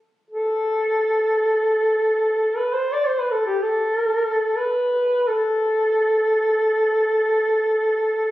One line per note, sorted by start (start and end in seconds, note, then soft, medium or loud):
0.30 2.58 A4 medium
2.57 2.75 B4 medium
2.74 2.94 C5 medium
2.93 3.08 D5 medium
3.07 3.21 C5 medium
3.19 3.33 B4 medium
3.31 3.46 A4 medium
3.47 3.64 G4 medium
3.63 4.59 A4 medium
4.57 5.29 B4 medium
5.28 8.31 A4 medium